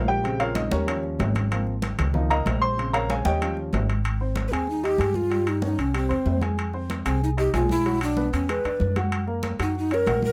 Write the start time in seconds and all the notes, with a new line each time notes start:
Already playing: A#1 F3 A#3 D#4
0.08 G4 G5, high conga
0.23 C#3 G#3 C4, high conga, high timbale
0.40 F4 A#4 C#5 F5, high conga, high timbale
0.55 D#4 D#5, high conga, high timbale
0.71 D#2 C#4 G4 A#4 C#5, high conga
0.86 F3 G3 C#4, high conga, high timbale
1.03 high conga
1.19 G#1, high conga, high timbale, low timbale
1.35 high conga, high timbale
1.51 F3 A#3 C4, high conga, high timbale
1.67 high conga
1.82 high conga, high timbale
1.99 C#2, low conga, high timbale
2.14 F3 A#3 D#4, high conga, low conga
2.30 A#4 D#5 F5 A#5, high conga, high timbale
2.46 A#1, high conga, high timbale, low timbale
2.61 C5 C6, high conga
2.77 C#3 G#3 C4, high conga, high timbale
2.93 A#4 C#5 F5 A#5, high conga, high timbale
3.10 G#4 C#5 F5 G#5, high conga, high timbale
3.25 D#2 G4 C#5 D#5 G5, high conga
3.41 F3 G3 C#4, high conga, high timbale
3.57 high conga
3.73 G#1, high conga, high timbale, low timbale
3.90 high timbale
4.04 high conga, high timbale
4.20 C4 C5, high conga
4.36 high conga, high timbale
4.48 D#2 B4, high conga
4.52 C4 G#4 G#5, high timbale
4.67 D#4, high conga
4.83 D#4 G4 D#5, high conga, high timbale
4.98 G2 G#4 G#5, high conga, high timbale
5.14 F4, high conga
5.30 G3 G4, high conga, high timbale
5.46 D#4, high conga, high timbale
5.62 C#4 D#4 C#5, high conga
5.78 C2 C#4, high conga, high timbale
5.94 G3 C4 G4, high conga, high timbale
6.09 E2 C4 C5, high conga, high timbale
6.26 F2, high conga, low timbale
6.41 G#4 G#5, high conga, high timbale
6.58 high conga, high timbale
6.73 C4 C5, high conga
6.90 high conga, high timbale
7.05 C2 C4 G#4 G#5, high conga, high timbale
7.22 D#4, high conga
7.37 D#4 G4 D#5, high conga, high timbale
7.54 B1 F4 G#4 G#5, high conga, high timbale, low timbale
7.69 E4, high conga
7.85 F#3 F#4, high conga, high timbale
8.01 D4, high conga, high timbale
8.17 B3 B4, high conga
8.33 E2 C#4, high conga, high timbale
8.48 G#3 G#4 B4, high conga, high timbale
8.64 E2 D4 D5, high conga, high timbale
8.80 F#2, high conga
8.96 F#4 F#5, high conga, high timbale
9.12 high conga, high timbale
9.27 A#3 A#4, high conga
9.43 high conga, high timbale
9.59 F#2 D#4 F#4 F#5, high conga, high timbale
9.75 D#4, high conga
9.91 C#4 A#4 C#5, high conga, high timbale
10.06 A#1 F#4 F#5, high conga, high timbale, low timbale
10.22 A#4, high conga